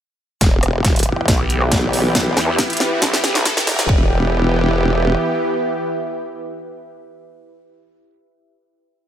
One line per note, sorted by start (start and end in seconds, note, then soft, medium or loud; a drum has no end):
0.41 1.26 E1 medium
0.41 3.85 E3 medium
0.41 3.85 B3 medium
0.41 3.88 E4 medium
0.41 3.85 G4 medium
0.41 kick medium
0.41 snare soft
0.41 closed hi-hat medium
0.41 riser medium
0.48 3.89 G4 medium
0.63 cross-stick medium
0.63 closed hi-hat medium
0.85 kick medium
0.85 snare soft
0.85 closed hi-hat medium
0.96 closed hi-hat medium
0.99 closed hi-hat medium
1.03 closed hi-hat medium
1.14 3.89 B4 medium
1.14 3.89 E5 medium
1.28 1.70 B1 loud
1.28 kick loud
1.28 snare medium
1.28 closed hi-hat medium
1.50 closed hi-hat medium
1.61 cross-stick soft
1.72 2.35 B1 medium
1.72 kick loud
1.72 snare medium
1.72 closed hi-hat medium
1.93 open hi-hat loud
2.15 kick loud
2.15 snare medium
2.15 closed hi-hat medium
2.37 2.57 E2 medium
2.37 snare medium
2.37 closed hi-hat medium
2.58 kick loud
2.58 snare medium
2.58 closed hi-hat medium
2.70 closed hi-hat medium
2.73 closed hi-hat medium
2.77 snare medium
2.77 closed hi-hat medium
3.02 3.44 B1 loud
3.02 kick loud
3.02 snare medium
3.02 closed hi-hat medium
3.13 snare medium
3.24 snare medium
3.24 closed hi-hat medium
3.35 snare medium
3.45 kick loud
3.45 snare loud
3.45 closed hi-hat medium
3.57 snare medium
3.67 3.77 E1 medium
3.67 snare loud
3.67 open hi-hat medium
3.79 3.87 B1 loud
3.79 snare loud
3.89 5.15 E1 medium
3.89 6.91 E3 medium
3.89 6.91 B3 medium
3.89 6.91 E4 medium
3.89 6.91 G4 medium
3.89 kick loud
3.96 6.98 G4 medium
4.02 7.04 B4 medium
4.09 7.11 E5 medium